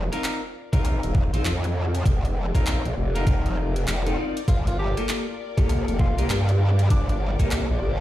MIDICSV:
0, 0, Header, 1, 6, 480
1, 0, Start_track
1, 0, Tempo, 606061
1, 1630, Time_signature, 4, 2, 24, 8
1, 6338, End_track
2, 0, Start_track
2, 0, Title_t, "String section"
2, 0, Program_c, 0, 48
2, 0, Note_on_c, 0, 65, 78
2, 0, Note_on_c, 0, 67, 57
2, 0, Note_on_c, 0, 72, 68
2, 0, Note_on_c, 0, 74, 88
2, 0, Note_on_c, 0, 77, 64
2, 85, Note_on_c, 0, 70, 77
2, 342, Note_off_c, 0, 67, 0
2, 373, Note_off_c, 0, 72, 0
2, 1247, Note_off_c, 0, 77, 0
2, 6338, Note_off_c, 0, 65, 0
2, 6338, Note_off_c, 0, 70, 0
2, 6338, Note_off_c, 0, 74, 0
2, 6338, End_track
3, 0, Start_track
3, 0, Title_t, "Clean electric guitar"
3, 0, Program_c, 1, 27
3, 94, Note_on_c, 1, 70, 110
3, 99, Note_on_c, 1, 65, 77
3, 101, Note_on_c, 1, 63, 80
3, 105, Note_on_c, 1, 60, 92
3, 316, Note_off_c, 1, 63, 0
3, 316, Note_off_c, 1, 70, 0
3, 317, Note_off_c, 1, 60, 0
3, 317, Note_off_c, 1, 65, 0
3, 575, Note_on_c, 1, 70, 106
3, 578, Note_on_c, 1, 65, 83
3, 582, Note_on_c, 1, 63, 82
3, 584, Note_on_c, 1, 60, 79
3, 1022, Note_off_c, 1, 65, 0
3, 1023, Note_off_c, 1, 60, 0
3, 1023, Note_off_c, 1, 63, 0
3, 1023, Note_off_c, 1, 70, 0
3, 1055, Note_on_c, 1, 72, 98
3, 1058, Note_on_c, 1, 65, 79
3, 1061, Note_on_c, 1, 63, 74
3, 1065, Note_on_c, 1, 60, 74
3, 1173, Note_off_c, 1, 60, 0
3, 1173, Note_off_c, 1, 63, 0
3, 1173, Note_off_c, 1, 65, 0
3, 1173, Note_off_c, 1, 72, 0
3, 2016, Note_on_c, 1, 70, 100
3, 2018, Note_on_c, 1, 65, 79
3, 2023, Note_on_c, 1, 63, 75
3, 2026, Note_on_c, 1, 60, 84
3, 2237, Note_off_c, 1, 60, 0
3, 2237, Note_off_c, 1, 63, 0
3, 2237, Note_off_c, 1, 65, 0
3, 2237, Note_off_c, 1, 70, 0
3, 2496, Note_on_c, 1, 70, 104
3, 2498, Note_on_c, 1, 65, 83
3, 2501, Note_on_c, 1, 63, 82
3, 2505, Note_on_c, 1, 60, 85
3, 2942, Note_off_c, 1, 60, 0
3, 2942, Note_off_c, 1, 63, 0
3, 2942, Note_off_c, 1, 65, 0
3, 2943, Note_off_c, 1, 70, 0
3, 3215, Note_on_c, 1, 69, 96
3, 3218, Note_on_c, 1, 65, 78
3, 3220, Note_on_c, 1, 63, 72
3, 3225, Note_on_c, 1, 60, 73
3, 3295, Note_off_c, 1, 63, 0
3, 3296, Note_off_c, 1, 60, 0
3, 3296, Note_off_c, 1, 65, 0
3, 3296, Note_off_c, 1, 69, 0
3, 3305, Note_on_c, 1, 74, 97
3, 3308, Note_on_c, 1, 65, 74
3, 3312, Note_on_c, 1, 63, 70
3, 3315, Note_on_c, 1, 60, 76
3, 3472, Note_off_c, 1, 60, 0
3, 3472, Note_off_c, 1, 65, 0
3, 3472, Note_off_c, 1, 74, 0
3, 3473, Note_off_c, 1, 63, 0
3, 3936, Note_on_c, 1, 69, 102
3, 3938, Note_on_c, 1, 67, 74
3, 3941, Note_on_c, 1, 65, 77
3, 3944, Note_on_c, 1, 58, 79
3, 4156, Note_off_c, 1, 67, 0
3, 4157, Note_off_c, 1, 58, 0
3, 4157, Note_off_c, 1, 65, 0
3, 4157, Note_off_c, 1, 69, 0
3, 4413, Note_on_c, 1, 69, 108
3, 4415, Note_on_c, 1, 67, 86
3, 4421, Note_on_c, 1, 65, 70
3, 4424, Note_on_c, 1, 58, 84
3, 4862, Note_off_c, 1, 58, 0
3, 4862, Note_off_c, 1, 65, 0
3, 4862, Note_off_c, 1, 67, 0
3, 4862, Note_off_c, 1, 69, 0
3, 4893, Note_on_c, 1, 70, 106
3, 4898, Note_on_c, 1, 67, 77
3, 4900, Note_on_c, 1, 65, 76
3, 4905, Note_on_c, 1, 58, 83
3, 5013, Note_off_c, 1, 58, 0
3, 5013, Note_off_c, 1, 65, 0
3, 5013, Note_off_c, 1, 67, 0
3, 5013, Note_off_c, 1, 70, 0
3, 5853, Note_on_c, 1, 69, 100
3, 5857, Note_on_c, 1, 67, 78
3, 5860, Note_on_c, 1, 65, 74
3, 5864, Note_on_c, 1, 58, 80
3, 6076, Note_off_c, 1, 58, 0
3, 6076, Note_off_c, 1, 65, 0
3, 6076, Note_off_c, 1, 67, 0
3, 6076, Note_off_c, 1, 69, 0
3, 6338, End_track
4, 0, Start_track
4, 0, Title_t, "Tenor saxophone"
4, 0, Program_c, 2, 66
4, 3550, Note_on_c, 2, 65, 83
4, 3645, Note_off_c, 2, 65, 0
4, 3702, Note_on_c, 2, 65, 74
4, 3759, Note_off_c, 2, 65, 0
4, 3793, Note_on_c, 2, 67, 90
4, 4000, Note_off_c, 2, 67, 0
4, 4752, Note_on_c, 2, 65, 88
4, 4960, Note_off_c, 2, 65, 0
4, 5468, Note_on_c, 2, 62, 84
4, 5564, Note_off_c, 2, 62, 0
4, 5620, Note_on_c, 2, 62, 70
4, 5678, Note_off_c, 2, 62, 0
4, 6338, End_track
5, 0, Start_track
5, 0, Title_t, "Wobble bass"
5, 0, Program_c, 3, 39
5, 577, Note_on_c, 3, 34, 95
5, 794, Note_off_c, 3, 34, 0
5, 819, Note_on_c, 3, 27, 96
5, 1035, Note_off_c, 3, 27, 0
5, 1060, Note_on_c, 3, 34, 92
5, 1136, Note_off_c, 3, 34, 0
5, 1148, Note_on_c, 3, 41, 93
5, 1614, Note_off_c, 3, 41, 0
5, 1629, Note_on_c, 3, 29, 96
5, 1994, Note_off_c, 3, 29, 0
5, 2017, Note_on_c, 3, 34, 90
5, 2234, Note_off_c, 3, 34, 0
5, 2260, Note_on_c, 3, 34, 95
5, 2336, Note_off_c, 3, 34, 0
5, 2352, Note_on_c, 3, 29, 96
5, 3056, Note_off_c, 3, 29, 0
5, 3070, Note_on_c, 3, 29, 97
5, 3295, Note_off_c, 3, 29, 0
5, 3548, Note_on_c, 3, 31, 97
5, 3914, Note_off_c, 3, 31, 0
5, 4415, Note_on_c, 3, 36, 99
5, 4633, Note_off_c, 3, 36, 0
5, 4659, Note_on_c, 3, 29, 97
5, 4875, Note_off_c, 3, 29, 0
5, 4898, Note_on_c, 3, 36, 94
5, 4975, Note_off_c, 3, 36, 0
5, 4989, Note_on_c, 3, 43, 93
5, 5455, Note_off_c, 3, 43, 0
5, 5467, Note_on_c, 3, 31, 98
5, 5834, Note_off_c, 3, 31, 0
5, 5856, Note_on_c, 3, 36, 89
5, 6074, Note_off_c, 3, 36, 0
5, 6101, Note_on_c, 3, 34, 99
5, 6176, Note_off_c, 3, 34, 0
5, 6192, Note_on_c, 3, 31, 92
5, 6338, Note_off_c, 3, 31, 0
5, 6338, End_track
6, 0, Start_track
6, 0, Title_t, "Drums"
6, 100, Note_on_c, 9, 37, 47
6, 100, Note_on_c, 9, 42, 52
6, 179, Note_off_c, 9, 37, 0
6, 179, Note_off_c, 9, 42, 0
6, 191, Note_on_c, 9, 39, 119
6, 191, Note_on_c, 9, 42, 65
6, 270, Note_off_c, 9, 39, 0
6, 270, Note_off_c, 9, 42, 0
6, 578, Note_on_c, 9, 36, 110
6, 580, Note_on_c, 9, 42, 51
6, 657, Note_off_c, 9, 36, 0
6, 659, Note_off_c, 9, 42, 0
6, 671, Note_on_c, 9, 37, 37
6, 671, Note_on_c, 9, 42, 64
6, 750, Note_off_c, 9, 37, 0
6, 750, Note_off_c, 9, 42, 0
6, 818, Note_on_c, 9, 42, 38
6, 898, Note_off_c, 9, 42, 0
6, 909, Note_on_c, 9, 36, 103
6, 988, Note_off_c, 9, 36, 0
6, 1059, Note_on_c, 9, 42, 52
6, 1138, Note_off_c, 9, 42, 0
6, 1150, Note_on_c, 9, 39, 117
6, 1150, Note_on_c, 9, 42, 64
6, 1229, Note_off_c, 9, 39, 0
6, 1229, Note_off_c, 9, 42, 0
6, 1300, Note_on_c, 9, 42, 39
6, 1379, Note_off_c, 9, 42, 0
6, 1541, Note_on_c, 9, 37, 36
6, 1541, Note_on_c, 9, 42, 52
6, 1620, Note_off_c, 9, 37, 0
6, 1620, Note_off_c, 9, 42, 0
6, 1628, Note_on_c, 9, 36, 112
6, 1632, Note_on_c, 9, 42, 59
6, 1707, Note_off_c, 9, 36, 0
6, 1711, Note_off_c, 9, 42, 0
6, 1782, Note_on_c, 9, 42, 34
6, 1861, Note_off_c, 9, 42, 0
6, 2017, Note_on_c, 9, 36, 61
6, 2021, Note_on_c, 9, 37, 45
6, 2021, Note_on_c, 9, 42, 48
6, 2096, Note_off_c, 9, 36, 0
6, 2100, Note_off_c, 9, 37, 0
6, 2100, Note_off_c, 9, 42, 0
6, 2111, Note_on_c, 9, 39, 117
6, 2111, Note_on_c, 9, 42, 61
6, 2191, Note_off_c, 9, 39, 0
6, 2191, Note_off_c, 9, 42, 0
6, 2261, Note_on_c, 9, 42, 32
6, 2340, Note_off_c, 9, 42, 0
6, 2499, Note_on_c, 9, 42, 47
6, 2578, Note_off_c, 9, 42, 0
6, 2588, Note_on_c, 9, 36, 106
6, 2590, Note_on_c, 9, 42, 61
6, 2667, Note_off_c, 9, 36, 0
6, 2669, Note_off_c, 9, 42, 0
6, 2739, Note_on_c, 9, 42, 36
6, 2819, Note_off_c, 9, 42, 0
6, 2830, Note_on_c, 9, 37, 50
6, 2909, Note_off_c, 9, 37, 0
6, 2979, Note_on_c, 9, 42, 51
6, 3058, Note_off_c, 9, 42, 0
6, 3070, Note_on_c, 9, 39, 116
6, 3070, Note_on_c, 9, 42, 62
6, 3149, Note_off_c, 9, 39, 0
6, 3149, Note_off_c, 9, 42, 0
6, 3219, Note_on_c, 9, 42, 35
6, 3299, Note_off_c, 9, 42, 0
6, 3460, Note_on_c, 9, 42, 51
6, 3539, Note_off_c, 9, 42, 0
6, 3547, Note_on_c, 9, 36, 106
6, 3550, Note_on_c, 9, 42, 57
6, 3626, Note_off_c, 9, 36, 0
6, 3629, Note_off_c, 9, 42, 0
6, 3700, Note_on_c, 9, 42, 34
6, 3779, Note_off_c, 9, 42, 0
6, 3939, Note_on_c, 9, 37, 46
6, 3939, Note_on_c, 9, 42, 46
6, 4018, Note_off_c, 9, 37, 0
6, 4018, Note_off_c, 9, 42, 0
6, 4030, Note_on_c, 9, 39, 112
6, 4030, Note_on_c, 9, 42, 62
6, 4109, Note_off_c, 9, 39, 0
6, 4109, Note_off_c, 9, 42, 0
6, 4416, Note_on_c, 9, 36, 100
6, 4419, Note_on_c, 9, 42, 47
6, 4495, Note_off_c, 9, 36, 0
6, 4498, Note_off_c, 9, 42, 0
6, 4510, Note_on_c, 9, 37, 38
6, 4510, Note_on_c, 9, 42, 63
6, 4589, Note_off_c, 9, 37, 0
6, 4589, Note_off_c, 9, 42, 0
6, 4659, Note_on_c, 9, 42, 34
6, 4738, Note_off_c, 9, 42, 0
6, 4747, Note_on_c, 9, 36, 98
6, 4826, Note_off_c, 9, 36, 0
6, 4898, Note_on_c, 9, 42, 50
6, 4977, Note_off_c, 9, 42, 0
6, 4989, Note_on_c, 9, 39, 115
6, 4989, Note_on_c, 9, 42, 60
6, 5068, Note_off_c, 9, 39, 0
6, 5068, Note_off_c, 9, 42, 0
6, 5138, Note_on_c, 9, 42, 35
6, 5218, Note_off_c, 9, 42, 0
6, 5378, Note_on_c, 9, 37, 36
6, 5378, Note_on_c, 9, 42, 48
6, 5457, Note_off_c, 9, 37, 0
6, 5457, Note_off_c, 9, 42, 0
6, 5467, Note_on_c, 9, 36, 110
6, 5468, Note_on_c, 9, 42, 59
6, 5546, Note_off_c, 9, 36, 0
6, 5547, Note_off_c, 9, 42, 0
6, 5618, Note_on_c, 9, 42, 35
6, 5697, Note_off_c, 9, 42, 0
6, 5856, Note_on_c, 9, 36, 59
6, 5858, Note_on_c, 9, 37, 47
6, 5858, Note_on_c, 9, 42, 45
6, 5935, Note_off_c, 9, 36, 0
6, 5937, Note_off_c, 9, 37, 0
6, 5937, Note_off_c, 9, 42, 0
6, 5949, Note_on_c, 9, 39, 110
6, 5949, Note_on_c, 9, 42, 62
6, 6028, Note_off_c, 9, 39, 0
6, 6028, Note_off_c, 9, 42, 0
6, 6338, End_track
0, 0, End_of_file